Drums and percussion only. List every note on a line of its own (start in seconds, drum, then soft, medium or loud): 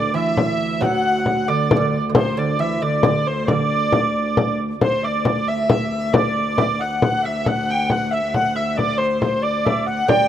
0.15 frame drum soft
0.37 frame drum medium
0.60 frame drum soft
0.82 frame drum medium
1.26 frame drum medium
1.49 frame drum soft
1.71 frame drum loud
1.93 frame drum soft
2.15 frame drum loud
2.82 frame drum soft
3.03 frame drum medium
3.26 frame drum soft
3.48 frame drum medium
3.92 frame drum medium
4.15 frame drum soft
4.37 frame drum medium
4.60 frame drum soft
4.81 frame drum medium
5.25 frame drum medium
5.48 frame drum soft
5.70 frame drum loud
5.92 frame drum soft
6.14 frame drum loud
6.58 frame drum medium
6.80 frame drum soft
7.02 frame drum medium
7.24 frame drum soft
7.46 frame drum medium
7.90 frame drum medium
8.12 frame drum soft
8.34 frame drum medium
8.57 frame drum soft
8.79 frame drum medium
9.22 frame drum medium
9.44 frame drum soft
9.66 frame drum medium
9.88 frame drum soft
10.09 frame drum medium